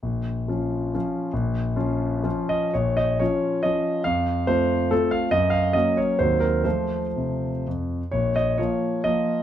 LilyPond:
<<
  \new Staff \with { instrumentName = "Grand piano" } { \time 3/4 \key bes \minor \tempo 4 = 134 r2. | r2 r8 ees''8 | des''8 ees''8 des''4 ees''4 | f''4 c''4 a'8 f''8 |
ees''8 f''8 ees''8 des''8 c''8 bes'8 | c''2 r4 | des''8 ees''8 des''4 ees''4 | }
  \new Staff \with { instrumentName = "Grand piano" } { \time 3/4 \key bes \minor bes,,4 <f des' f'>4 <f des' f'>4 | bes,,4 <f des' f'>4 <f des' f'>4 | bes,,4 <f des' f'>4 <f des' f'>4 | f,4 <a c' f'>4 <a c' f'>4 |
ges,4 <ges bes des'>4 <ees, ges c'>4 | <f a f'>4 c4 f,4 | bes,,4 <f bes f'>4 <f bes f'>4 | }
>>